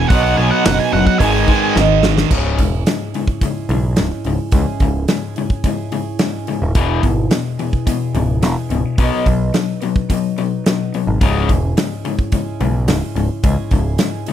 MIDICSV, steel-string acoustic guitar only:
0, 0, Header, 1, 2, 480
1, 0, Start_track
1, 0, Key_signature, 4, "minor"
1, 0, Tempo, 555556
1, 92, Time_signature, 4, 2, 24, 8
1, 12380, End_track
2, 0, Start_track
2, 0, Title_t, "Steel-string acoustic guitar"
2, 0, Program_c, 0, 25
2, 0, Note_on_c, 0, 56, 45
2, 0, Note_on_c, 0, 59, 52
2, 0, Note_on_c, 0, 64, 53
2, 0, Note_on_c, 0, 68, 58
2, 88, Note_off_c, 0, 68, 0
2, 90, Note_off_c, 0, 56, 0
2, 91, Note_off_c, 0, 59, 0
2, 91, Note_on_c, 0, 47, 80
2, 94, Note_off_c, 0, 64, 0
2, 94, Note_on_c, 0, 51, 81
2, 94, Note_on_c, 0, 54, 86
2, 101, Note_on_c, 0, 59, 87
2, 101, Note_on_c, 0, 63, 95
2, 104, Note_on_c, 0, 71, 88
2, 557, Note_off_c, 0, 47, 0
2, 559, Note_off_c, 0, 51, 0
2, 561, Note_off_c, 0, 54, 0
2, 565, Note_off_c, 0, 59, 0
2, 568, Note_on_c, 0, 47, 80
2, 569, Note_off_c, 0, 63, 0
2, 569, Note_off_c, 0, 71, 0
2, 570, Note_on_c, 0, 51, 80
2, 571, Note_on_c, 0, 54, 88
2, 576, Note_on_c, 0, 59, 86
2, 579, Note_on_c, 0, 63, 84
2, 580, Note_on_c, 0, 71, 93
2, 1035, Note_off_c, 0, 54, 0
2, 1036, Note_off_c, 0, 59, 0
2, 1038, Note_on_c, 0, 56, 63
2, 1043, Note_off_c, 0, 47, 0
2, 1043, Note_off_c, 0, 63, 0
2, 1044, Note_off_c, 0, 51, 0
2, 1046, Note_on_c, 0, 59, 70
2, 1049, Note_off_c, 0, 71, 0
2, 1060, Note_on_c, 0, 71, 70
2, 1266, Note_off_c, 0, 71, 0
2, 1277, Note_on_c, 0, 71, 53
2, 1279, Note_off_c, 0, 56, 0
2, 1281, Note_off_c, 0, 59, 0
2, 1285, Note_on_c, 0, 63, 53
2, 1291, Note_on_c, 0, 59, 49
2, 1298, Note_on_c, 0, 56, 45
2, 1510, Note_off_c, 0, 56, 0
2, 1512, Note_on_c, 0, 44, 75
2, 1513, Note_off_c, 0, 59, 0
2, 1517, Note_off_c, 0, 63, 0
2, 1517, Note_on_c, 0, 51, 87
2, 1518, Note_off_c, 0, 71, 0
2, 1520, Note_on_c, 0, 56, 88
2, 1524, Note_on_c, 0, 59, 83
2, 1528, Note_on_c, 0, 63, 99
2, 1530, Note_on_c, 0, 71, 97
2, 1739, Note_off_c, 0, 71, 0
2, 1747, Note_off_c, 0, 63, 0
2, 1749, Note_on_c, 0, 71, 66
2, 1753, Note_off_c, 0, 59, 0
2, 1755, Note_off_c, 0, 44, 0
2, 1757, Note_off_c, 0, 51, 0
2, 1758, Note_on_c, 0, 63, 61
2, 1759, Note_off_c, 0, 56, 0
2, 1764, Note_on_c, 0, 59, 52
2, 1772, Note_on_c, 0, 56, 51
2, 1985, Note_off_c, 0, 56, 0
2, 1990, Note_on_c, 0, 49, 75
2, 1993, Note_off_c, 0, 71, 0
2, 1995, Note_on_c, 0, 56, 76
2, 1997, Note_off_c, 0, 63, 0
2, 1998, Note_off_c, 0, 59, 0
2, 2002, Note_on_c, 0, 61, 74
2, 2004, Note_on_c, 0, 64, 80
2, 2004, Note_on_c, 0, 68, 81
2, 2469, Note_off_c, 0, 56, 0
2, 2472, Note_off_c, 0, 49, 0
2, 2472, Note_off_c, 0, 61, 0
2, 2472, Note_on_c, 0, 56, 61
2, 2482, Note_on_c, 0, 61, 63
2, 2485, Note_off_c, 0, 64, 0
2, 2489, Note_on_c, 0, 64, 58
2, 2493, Note_off_c, 0, 68, 0
2, 2497, Note_on_c, 0, 68, 67
2, 2699, Note_off_c, 0, 68, 0
2, 2709, Note_on_c, 0, 68, 57
2, 2713, Note_off_c, 0, 56, 0
2, 2713, Note_off_c, 0, 64, 0
2, 2718, Note_off_c, 0, 61, 0
2, 2723, Note_on_c, 0, 64, 43
2, 2735, Note_on_c, 0, 61, 43
2, 2948, Note_off_c, 0, 61, 0
2, 2948, Note_on_c, 0, 56, 56
2, 2952, Note_off_c, 0, 68, 0
2, 2954, Note_off_c, 0, 64, 0
2, 2959, Note_on_c, 0, 61, 58
2, 2964, Note_on_c, 0, 64, 62
2, 2974, Note_on_c, 0, 68, 68
2, 3173, Note_off_c, 0, 68, 0
2, 3183, Note_on_c, 0, 68, 49
2, 3185, Note_off_c, 0, 64, 0
2, 3191, Note_off_c, 0, 56, 0
2, 3196, Note_off_c, 0, 61, 0
2, 3196, Note_on_c, 0, 64, 48
2, 3206, Note_on_c, 0, 61, 42
2, 3419, Note_off_c, 0, 61, 0
2, 3419, Note_on_c, 0, 56, 64
2, 3428, Note_off_c, 0, 64, 0
2, 3429, Note_off_c, 0, 68, 0
2, 3430, Note_on_c, 0, 61, 61
2, 3438, Note_on_c, 0, 64, 65
2, 3444, Note_on_c, 0, 68, 68
2, 3897, Note_on_c, 0, 49, 80
2, 3899, Note_off_c, 0, 61, 0
2, 3901, Note_off_c, 0, 56, 0
2, 3904, Note_on_c, 0, 56, 82
2, 3909, Note_on_c, 0, 61, 83
2, 3911, Note_off_c, 0, 64, 0
2, 3914, Note_off_c, 0, 68, 0
2, 3914, Note_on_c, 0, 64, 73
2, 3917, Note_on_c, 0, 68, 86
2, 4382, Note_off_c, 0, 56, 0
2, 4383, Note_off_c, 0, 61, 0
2, 4385, Note_on_c, 0, 56, 58
2, 4387, Note_off_c, 0, 49, 0
2, 4393, Note_on_c, 0, 61, 64
2, 4398, Note_off_c, 0, 64, 0
2, 4399, Note_off_c, 0, 68, 0
2, 4401, Note_on_c, 0, 64, 64
2, 4402, Note_on_c, 0, 68, 62
2, 4608, Note_off_c, 0, 68, 0
2, 4618, Note_on_c, 0, 68, 48
2, 4623, Note_off_c, 0, 64, 0
2, 4630, Note_off_c, 0, 61, 0
2, 4631, Note_off_c, 0, 56, 0
2, 4633, Note_on_c, 0, 64, 48
2, 4640, Note_on_c, 0, 61, 45
2, 4865, Note_off_c, 0, 61, 0
2, 4866, Note_on_c, 0, 56, 62
2, 4868, Note_off_c, 0, 68, 0
2, 4870, Note_off_c, 0, 64, 0
2, 4876, Note_on_c, 0, 61, 65
2, 4881, Note_on_c, 0, 64, 67
2, 4891, Note_on_c, 0, 68, 73
2, 5098, Note_off_c, 0, 68, 0
2, 5108, Note_on_c, 0, 68, 52
2, 5112, Note_off_c, 0, 56, 0
2, 5112, Note_off_c, 0, 64, 0
2, 5116, Note_off_c, 0, 61, 0
2, 5123, Note_on_c, 0, 64, 48
2, 5134, Note_on_c, 0, 61, 43
2, 5348, Note_off_c, 0, 61, 0
2, 5350, Note_on_c, 0, 56, 60
2, 5353, Note_off_c, 0, 68, 0
2, 5354, Note_off_c, 0, 64, 0
2, 5358, Note_on_c, 0, 61, 65
2, 5365, Note_on_c, 0, 64, 67
2, 5369, Note_on_c, 0, 68, 73
2, 5832, Note_off_c, 0, 56, 0
2, 5833, Note_off_c, 0, 64, 0
2, 5834, Note_on_c, 0, 40, 80
2, 5838, Note_off_c, 0, 68, 0
2, 5838, Note_on_c, 0, 52, 87
2, 5839, Note_off_c, 0, 61, 0
2, 5843, Note_on_c, 0, 56, 81
2, 5843, Note_on_c, 0, 64, 84
2, 5844, Note_on_c, 0, 59, 85
2, 5848, Note_on_c, 0, 68, 84
2, 6296, Note_off_c, 0, 56, 0
2, 6306, Note_on_c, 0, 56, 60
2, 6312, Note_off_c, 0, 64, 0
2, 6315, Note_off_c, 0, 59, 0
2, 6317, Note_off_c, 0, 40, 0
2, 6319, Note_off_c, 0, 68, 0
2, 6319, Note_on_c, 0, 59, 61
2, 6320, Note_off_c, 0, 52, 0
2, 6322, Note_on_c, 0, 64, 63
2, 6329, Note_on_c, 0, 68, 65
2, 6541, Note_off_c, 0, 68, 0
2, 6549, Note_off_c, 0, 64, 0
2, 6551, Note_on_c, 0, 68, 55
2, 6554, Note_off_c, 0, 56, 0
2, 6558, Note_off_c, 0, 59, 0
2, 6559, Note_on_c, 0, 64, 49
2, 6568, Note_on_c, 0, 59, 46
2, 6574, Note_on_c, 0, 56, 45
2, 6783, Note_off_c, 0, 56, 0
2, 6793, Note_off_c, 0, 59, 0
2, 6794, Note_on_c, 0, 56, 64
2, 6796, Note_off_c, 0, 68, 0
2, 6800, Note_off_c, 0, 64, 0
2, 6804, Note_on_c, 0, 59, 67
2, 6812, Note_on_c, 0, 64, 66
2, 6814, Note_on_c, 0, 68, 66
2, 7025, Note_off_c, 0, 68, 0
2, 7033, Note_off_c, 0, 64, 0
2, 7036, Note_on_c, 0, 68, 50
2, 7038, Note_off_c, 0, 56, 0
2, 7043, Note_off_c, 0, 59, 0
2, 7044, Note_on_c, 0, 64, 52
2, 7054, Note_on_c, 0, 59, 51
2, 7059, Note_on_c, 0, 56, 46
2, 7262, Note_off_c, 0, 56, 0
2, 7273, Note_off_c, 0, 59, 0
2, 7273, Note_on_c, 0, 56, 61
2, 7275, Note_off_c, 0, 64, 0
2, 7279, Note_off_c, 0, 68, 0
2, 7283, Note_on_c, 0, 59, 69
2, 7286, Note_on_c, 0, 64, 66
2, 7294, Note_on_c, 0, 68, 66
2, 7756, Note_off_c, 0, 59, 0
2, 7756, Note_on_c, 0, 47, 83
2, 7757, Note_off_c, 0, 56, 0
2, 7759, Note_on_c, 0, 51, 71
2, 7760, Note_on_c, 0, 54, 78
2, 7765, Note_off_c, 0, 64, 0
2, 7766, Note_off_c, 0, 68, 0
2, 7767, Note_on_c, 0, 59, 88
2, 7769, Note_on_c, 0, 63, 91
2, 7770, Note_on_c, 0, 71, 92
2, 8228, Note_off_c, 0, 54, 0
2, 8234, Note_off_c, 0, 59, 0
2, 8238, Note_on_c, 0, 54, 63
2, 8241, Note_off_c, 0, 47, 0
2, 8241, Note_off_c, 0, 63, 0
2, 8243, Note_off_c, 0, 51, 0
2, 8245, Note_on_c, 0, 59, 58
2, 8246, Note_off_c, 0, 71, 0
2, 8251, Note_on_c, 0, 63, 66
2, 8256, Note_on_c, 0, 71, 67
2, 8464, Note_off_c, 0, 71, 0
2, 8472, Note_off_c, 0, 63, 0
2, 8474, Note_on_c, 0, 71, 59
2, 8482, Note_off_c, 0, 54, 0
2, 8482, Note_off_c, 0, 59, 0
2, 8482, Note_on_c, 0, 63, 48
2, 8493, Note_on_c, 0, 59, 41
2, 8497, Note_on_c, 0, 54, 46
2, 8711, Note_off_c, 0, 54, 0
2, 8720, Note_off_c, 0, 59, 0
2, 8721, Note_off_c, 0, 71, 0
2, 8721, Note_on_c, 0, 54, 63
2, 8724, Note_off_c, 0, 63, 0
2, 8731, Note_on_c, 0, 59, 60
2, 8736, Note_on_c, 0, 63, 62
2, 8741, Note_on_c, 0, 71, 61
2, 8952, Note_off_c, 0, 71, 0
2, 8962, Note_off_c, 0, 63, 0
2, 8963, Note_on_c, 0, 71, 53
2, 8964, Note_off_c, 0, 54, 0
2, 8964, Note_off_c, 0, 59, 0
2, 8972, Note_on_c, 0, 63, 51
2, 8974, Note_on_c, 0, 59, 41
2, 8981, Note_on_c, 0, 54, 43
2, 9198, Note_off_c, 0, 54, 0
2, 9204, Note_off_c, 0, 59, 0
2, 9205, Note_off_c, 0, 71, 0
2, 9209, Note_on_c, 0, 54, 58
2, 9210, Note_off_c, 0, 63, 0
2, 9215, Note_on_c, 0, 59, 69
2, 9225, Note_on_c, 0, 63, 68
2, 9227, Note_on_c, 0, 71, 68
2, 9683, Note_off_c, 0, 54, 0
2, 9685, Note_on_c, 0, 49, 81
2, 9687, Note_on_c, 0, 56, 75
2, 9691, Note_off_c, 0, 59, 0
2, 9692, Note_off_c, 0, 63, 0
2, 9694, Note_on_c, 0, 61, 82
2, 9695, Note_off_c, 0, 71, 0
2, 9696, Note_on_c, 0, 64, 92
2, 9698, Note_on_c, 0, 68, 90
2, 10162, Note_off_c, 0, 56, 0
2, 10163, Note_off_c, 0, 61, 0
2, 10166, Note_on_c, 0, 56, 61
2, 10168, Note_off_c, 0, 49, 0
2, 10174, Note_on_c, 0, 61, 67
2, 10178, Note_off_c, 0, 64, 0
2, 10180, Note_off_c, 0, 68, 0
2, 10182, Note_on_c, 0, 64, 67
2, 10184, Note_on_c, 0, 68, 71
2, 10392, Note_off_c, 0, 68, 0
2, 10403, Note_on_c, 0, 68, 55
2, 10404, Note_off_c, 0, 64, 0
2, 10408, Note_off_c, 0, 56, 0
2, 10412, Note_off_c, 0, 61, 0
2, 10414, Note_on_c, 0, 64, 51
2, 10428, Note_on_c, 0, 61, 43
2, 10640, Note_off_c, 0, 61, 0
2, 10640, Note_on_c, 0, 56, 64
2, 10645, Note_off_c, 0, 64, 0
2, 10647, Note_off_c, 0, 68, 0
2, 10650, Note_on_c, 0, 61, 68
2, 10655, Note_on_c, 0, 64, 70
2, 10661, Note_on_c, 0, 68, 69
2, 10877, Note_off_c, 0, 68, 0
2, 10886, Note_off_c, 0, 56, 0
2, 10887, Note_off_c, 0, 64, 0
2, 10887, Note_on_c, 0, 68, 50
2, 10891, Note_off_c, 0, 61, 0
2, 10897, Note_on_c, 0, 64, 51
2, 10906, Note_on_c, 0, 61, 44
2, 11120, Note_off_c, 0, 61, 0
2, 11125, Note_on_c, 0, 56, 56
2, 11127, Note_off_c, 0, 64, 0
2, 11129, Note_off_c, 0, 68, 0
2, 11130, Note_on_c, 0, 61, 71
2, 11137, Note_on_c, 0, 64, 74
2, 11145, Note_on_c, 0, 68, 69
2, 11602, Note_off_c, 0, 61, 0
2, 11604, Note_on_c, 0, 49, 82
2, 11606, Note_off_c, 0, 56, 0
2, 11609, Note_on_c, 0, 56, 79
2, 11612, Note_on_c, 0, 61, 77
2, 11614, Note_off_c, 0, 64, 0
2, 11616, Note_off_c, 0, 68, 0
2, 11618, Note_on_c, 0, 64, 88
2, 11619, Note_on_c, 0, 68, 86
2, 12083, Note_off_c, 0, 56, 0
2, 12086, Note_off_c, 0, 61, 0
2, 12087, Note_on_c, 0, 56, 59
2, 12088, Note_off_c, 0, 49, 0
2, 12096, Note_on_c, 0, 61, 67
2, 12099, Note_off_c, 0, 64, 0
2, 12103, Note_on_c, 0, 64, 64
2, 12106, Note_off_c, 0, 68, 0
2, 12109, Note_on_c, 0, 68, 72
2, 12319, Note_off_c, 0, 68, 0
2, 12330, Note_off_c, 0, 56, 0
2, 12330, Note_on_c, 0, 68, 58
2, 12331, Note_off_c, 0, 64, 0
2, 12334, Note_off_c, 0, 61, 0
2, 12341, Note_on_c, 0, 64, 48
2, 12352, Note_on_c, 0, 61, 48
2, 12380, Note_off_c, 0, 61, 0
2, 12380, Note_off_c, 0, 64, 0
2, 12380, Note_off_c, 0, 68, 0
2, 12380, End_track
0, 0, End_of_file